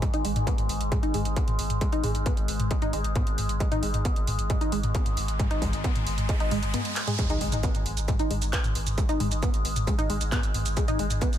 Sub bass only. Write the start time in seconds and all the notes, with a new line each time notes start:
0.13 G#1
0.25 G#1
0.36 G#1
0.58 G#1
0.69 G#1
0.81 G#1
1.03 G#1
1.14 G#1
1.25 G#1
1.48 G#1
1.59 G#1
1.70 G#1
1.92 G#1
2.04 G#1
2.15 G#1
2.37 G#1
2.48 G#1
2.60 G#1
2.82 G#1
2.93 G#1
3.04 G#1
3.27 G#1
3.38 G#1
3.49 G#1
3.72 G#1
3.83 G#1
3.94 G#1
4.16 G#1
4.27 G#1
4.39 G#1
4.61 G#1
4.72 G#1
4.83 G#1
5.06 G#1
5.17 G#1
5.28 G#1
5.51 G#1
5.62 G#1
5.73 G#1
5.95 G#1
6.07 G#1
6.18 G#1
6.40 G#1
6.51 G#1
6.63 G#1
7.30 G#1
7.41 G#1
7.52 G#1
7.75 G#1
7.86 G#1
7.97 G#1
8.19 G#1
8.30 G#1
8.42 G#1
8.64 G#1
8.75 G#1
8.87 G#1
9.09 G#1
9.20 G#1
9.31 G#1
9.54 G#1
9.65 G#1
9.76 G#1
9.99 G#1
10.10 G#1
10.21 G#1
10.43 G#1
10.54 G#1
10.66 G#1
10.88 G#1
10.99 G#1
11.10 G#1
11.33 G#1